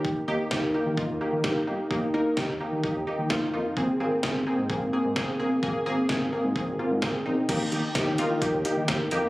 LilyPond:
<<
  \new Staff \with { instrumentName = "Analog polysynth" } { \time 4/4 \key ees \major \tempo 4 = 129 <bes ees' g'>8 <bes ees' g'>8 <bes ees' g'>8 <bes ees' g'>8 <bes ees' f'>8 <bes ees' g'>8 <bes ees' g'>8 <bes ees' g'>8 | <bes ees' g'>8 <bes ees' bes'>8 <bes ees' g'>8 <bes ees' g'>8 <bes ees' g'>8 <bes ees' g'>8 <bes ees' f'>8 <bes ees' f'>8 | <bes c' aes'>8 <bes c' aes'>8 <bes c' aes'>8 <bes c' aes'>8 <bes c' aes'>8 <bes c' aes'>8 <bes c' aes'>8 <bes c' aes'>8 | <bes c' aes'>8 <bes c' aes'>8 <bes c' aes'>8 <bes c' aes'>8 <bes c' aes'>8 <bes c' f'>8 <bes c' aes'>8 <bes c' ees'>8 |
<bes ees' g'>8 <bes ees' g'>8 <bes ees' g'>8 <bes ees' f'>8 <bes ees' g'>8 <bes ees' g'>8 <bes ees' g'>8 <bes ees' g'>8 | }
  \new Staff \with { instrumentName = "Analog synth bass" } { \clef bass \time 4/4 \key ees \major ees,16 r16 ees,16 r8 ees,16 r16 ees16 r16 ees,16 r16 ees16 g,16 r16 g,,16 r16 | ees,16 r16 ees,16 r8 ees,16 r16 ees16 r16 ees,16 r16 ees16 ees,16 r16 f,16 r16 | aes,,16 r16 aes,,16 r8 aes,,16 r16 aes,16 r16 aes,,16 r16 aes,16 aes,,16 r16 bes,,16 r16 | aes,,16 r16 aes,,16 r8 aes,,16 r16 aes,16 r16 aes,,16 r16 aes,16 aes,,16 r16 bes,,16 r16 |
ees,16 r16 ees,16 r8 ees,16 r16 ees16 r16 ees,16 r16 ees16 ees,16 r16 f,16 r16 | }
  \new DrumStaff \with { instrumentName = "Drums" } \drummode { \time 4/4 bd4 <bd sn>4 bd4 <bd sn>4 | bd4 <bd sn>4 bd4 <bd sn>4 | bd4 <bd sn>4 bd4 <bd sn>4 | bd4 <bd sn>4 bd4 <bd sn>4 |
<cymc hh bd>8 hh8 <hh bd sn>8 hh8 <hh bd>8 hh8 <hh bd sn>8 hh8 | }
>>